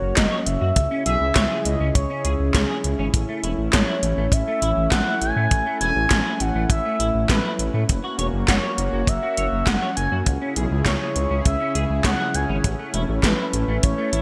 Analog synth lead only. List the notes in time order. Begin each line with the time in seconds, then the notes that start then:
Already playing: C#5
0.16 D#5
0.46 E5
1.06 E5
1.65 D#5
1.95 C#5
2.55 G#4
3.73 C#5
4.33 E5
4.92 F#5
5.21 G#5
5.81 G#5
6.41 F#5
6.71 E5
7.30 B4
8.49 C#5
9.08 E5
9.67 F#5
9.97 G#5
10.86 C#5
11.46 E5
12.05 F#5
12.35 G#5
13.24 B4
13.83 C#5